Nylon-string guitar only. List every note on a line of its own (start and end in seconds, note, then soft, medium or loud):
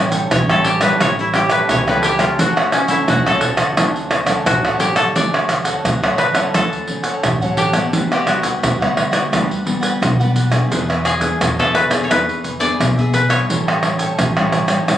0.00 0.28 A2 medium
0.00 0.43 G3 soft
0.00 0.43 C#4 medium
0.00 0.43 E4 medium
0.32 0.97 E3 medium
0.51 0.79 G3 medium
0.51 0.79 C#4 medium
0.51 0.79 E4 medium
0.82 0.94 G3 medium
0.82 0.95 C#4 medium
0.82 0.95 E4 medium
1.01 1.67 A2 medium
1.01 1.21 G3 medium
1.01 1.21 C#4 medium
1.01 1.22 E4 medium
1.34 1.81 G3 medium
1.34 1.81 C#4 medium
1.34 1.81 E4 medium
1.70 2.36 E3 medium
1.88 2.17 G3 medium
1.88 2.17 C#4 medium
1.88 2.17 E4 medium
2.19 2.67 F#3 medium
2.19 2.67 A3 medium
2.19 2.67 C#4 medium
2.39 3.05 D3 medium
2.88 3.19 F#3 medium
2.88 3.19 A3 medium
2.88 3.19 C#4 medium
3.08 3.74 A2 medium
3.27 3.73 F#3 medium
3.27 3.73 A3 medium
3.27 3.73 C#4 medium
3.77 4.43 D3 medium
3.77 4.10 F#3 medium
3.77 4.10 A3 medium
3.77 4.10 C#4 medium
4.27 4.74 F#3 medium
4.27 4.75 A3 medium
4.27 4.75 C#4 medium
4.47 5.12 A2 medium
4.80 5.01 F#3 medium
4.80 5.01 A3 medium
4.80 5.01 C#4 medium
5.16 5.82 D3 medium
5.16 5.45 F#3 medium
5.16 5.45 A3 soft
5.16 5.45 C#4 medium
5.49 5.96 F#3 soft
5.49 5.97 A3 soft
5.85 6.51 A2 soft
6.04 6.32 F#3 medium
6.04 6.32 A3 medium
6.04 6.33 C#4 medium
6.35 6.48 F#3 medium
6.35 6.48 A3 medium
6.35 6.48 C#4 medium
6.54 7.21 D3 medium
6.54 6.84 F#3 soft
6.54 6.84 A3 soft
6.54 6.84 C#4 medium
6.88 7.35 F#3 soft
6.88 7.35 A3 soft
6.88 7.36 C#4 medium
7.24 7.90 A2 medium
7.42 7.71 F#3 medium
7.42 7.71 A3 medium
7.42 7.71 C#4 medium
7.73 8.21 G3 medium
7.73 8.21 B3 medium
7.93 8.59 D3 medium
8.26 8.74 G3 soft
8.26 8.74 B3 soft
8.26 8.74 F#4 soft
8.63 9.29 D3 medium
8.81 9.10 G3 medium
8.81 9.10 B3 medium
8.81 9.10 F#4 medium
9.12 9.25 G3 medium
9.12 9.26 B3 medium
9.12 9.26 F#4 medium
9.32 9.98 D3 soft
9.32 9.53 G3 medium
9.32 9.53 B3 soft
9.32 9.53 F#4 medium
9.65 10.13 G3 soft
9.65 10.13 B3 soft
9.65 10.13 F#4 medium
10.02 10.68 D3 medium
10.20 10.49 G3 medium
10.20 10.49 B3 medium
10.20 10.49 F#4 medium
10.51 10.99 B3 medium
10.51 10.99 D4 medium
10.51 11.00 G#4 medium
10.71 11.37 E3 medium
11.20 11.51 B3 soft
11.20 11.51 D4 soft
11.20 11.51 G#4 medium
11.41 12.07 B2 medium
11.59 11.88 B3 medium
11.59 11.88 D4 medium
11.59 11.88 G#4 medium
11.90 12.03 B3 medium
11.90 12.04 D4 medium
11.90 12.04 G#4 medium
12.10 12.76 E3 medium
12.10 12.43 B3 medium
12.10 12.43 D4 medium
12.10 12.43 G#4 medium
12.60 12.90 B3 medium
12.60 12.91 D4 medium
12.60 12.91 G#4 medium
12.80 13.46 B2 medium
12.98 13.44 B3 medium
12.98 13.45 D4 medium
12.98 13.45 G#4 medium
13.50 14.16 A2 medium
13.50 13.79 G3 medium
13.50 13.79 C#4 medium
13.50 13.79 E4 medium
13.83 14.16 G3 soft
13.83 14.16 C#4 soft
13.83 14.16 E4 medium
14.19 14.85 E3 medium
14.38 14.66 G3 medium
14.38 14.67 C#4 medium
14.38 14.67 E4 medium
14.69 14.82 G3 medium
14.69 14.82 C#4 medium
14.69 14.82 E4 medium
14.88 14.98 A2 soft
14.88 14.98 G3 soft
14.88 14.98 C#4 medium
14.88 14.98 E4 medium